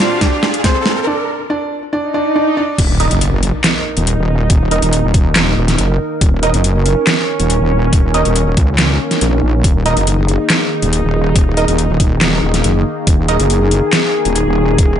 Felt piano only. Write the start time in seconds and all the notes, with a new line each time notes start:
Already playing: C4 C5
0.21 D4 D5
0.64 C4 C5
1.07 D4 D5
1.50 D4 D5
1.93 D4 D5
2.14 D4 D5
2.36 D4 D5
2.57 D4 D5